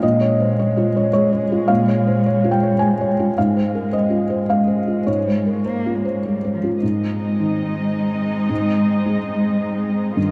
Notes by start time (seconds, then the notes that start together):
0.02 A#2 G#3 D#5
0.21 C#5
0.40 C5
0.59 C#5
0.77 F4
0.97 C#5
1.13 G#3 C#5
1.33 C#5
1.52 F4
1.68 A#2 F5
1.88 C#5
2.07 C5
2.26 C#5
2.44 F4
2.51 G5
2.63 C#5
2.79 G#3 G#5
3.01 C#5
3.19 F4
3.37 G#2 G#3 F5
3.57 C5
3.75 A#4
3.93 C5 D#5
4.10 F4
4.30 C5
4.49 G#3 F5
4.67 C5
4.87 F4
5.07 G#2 C#5
5.27 C5
5.46 A#4
5.65 A#3 C5
5.86 F4
5.95 G#3
6.05 C5
6.25 G3 G#3
6.45 C5
6.54 F3
6.64 F4
6.81 G#2 G#3 C4 D#4 D#5
7.40 D#3
8.50 G#2
9.06 G#3
10.15 G2 D#3 A#3 F4 D#5